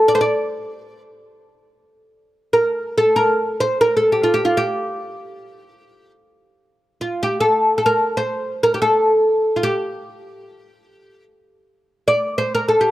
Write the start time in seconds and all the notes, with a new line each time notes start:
0.08 D5
0.15 C5
0.21 D5
2.53 A#4
2.98 A4
3.16 A#4
3.60 C5
3.81 A#4
3.97 A4
4.12 G4
4.23 F4
4.34 G4
4.45 F4
4.57 G4
7.01 F4
7.23 G4
7.40 A4
7.78 A4
7.86 A#4
8.17 C5
8.63 A#4
8.74 G4
8.82 A4
9.56 F4
9.63 G4
12.08 D5
12.38 C5
12.55 A#4
12.69 A4
12.81 G4